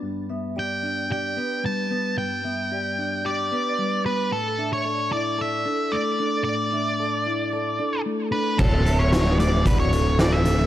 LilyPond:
<<
  \new Staff \with { instrumentName = "Lead electric guitar" } { \time 4/4 \key d \major \tempo 4 = 112 r4 g''4 g''4 a''4 | g''2 d''4. b'8 | a'8. cis''8. d''8 e''4 d''4 | d''2. r8 b'8 |
a'8. cis''8. d''8 b'16 cis''8. d''16 e''8. | }
  \new Staff \with { instrumentName = "Vibraphone" } { \time 4/4 \key d \major r8 e''8 d''8 d''8 d''8 b'4 b'8 | r8 e''8 d''8 d''8 d''8 b'4 b'8 | r8 e''8 d''8 d''8 d''8 a'4 a'8 | r8 e''8 d''8 d''8 d''8 a'4 a'8 |
r8 e''8 d''8 d''8 d''8 a'4 a'8 | }
  \new Staff \with { instrumentName = "Clean electric guitar" } { \time 4/4 \key d \major g,8 b8 g'8 d'8 g'8 b8 g8 b8 | g,8 b8 g'8 d'8 g'8 b8 g8 b8 | a,8 d'8 a'8 e'8 a'8 d'8 a8 d'8 | a,8 d'8 a'8 e'8 a'8 d'8 a8 d'8 |
d,8 d8 fis'8 a8 fis'8 d8 a,8 d8 | }
  \new Staff \with { instrumentName = "Fingered electric bass" } { \clef bass \time 4/4 \key d \major r1 | r1 | r1 | r1 |
d,,1 | }
  \new DrumStaff \with { instrumentName = "Drums" } \drummode { \time 4/4 r4 r4 r4 r4 | r4 r4 r4 r4 | r4 r4 r4 r4 | r4 r4 r4 r4 |
<cymc bd>8 hh8 <hh sn>8 hh8 <hh bd>8 hh8 <hh sn>8 hh8 | }
>>